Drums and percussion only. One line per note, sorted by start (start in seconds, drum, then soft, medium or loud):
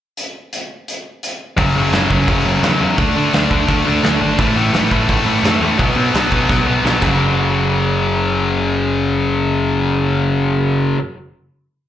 0.17 closed hi-hat medium
0.53 closed hi-hat medium
0.88 closed hi-hat medium
1.23 closed hi-hat medium
1.58 kick loud
1.58 open hi-hat medium
1.93 snare loud
1.93 open hi-hat medium
2.10 kick medium
2.28 kick loud
2.28 open hi-hat medium
2.63 snare loud
2.63 open hi-hat medium
2.98 kick loud
2.98 open hi-hat medium
3.33 snare loud
3.33 open hi-hat medium
3.51 kick medium
3.68 kick loud
3.68 open hi-hat medium
4.04 snare loud
4.04 open hi-hat medium
4.39 kick loud
4.39 open hi-hat medium
4.74 snare loud
4.74 open hi-hat medium
4.91 kick medium
5.09 kick loud
5.09 open hi-hat medium
5.44 snare loud
5.44 open hi-hat medium
5.79 kick loud
5.79 open hi-hat medium
6.15 snare loud
6.15 open hi-hat medium
6.32 kick medium
6.49 kick loud
6.49 snare medium
6.85 snare medium
7.02 kick loud
7.02 crash medium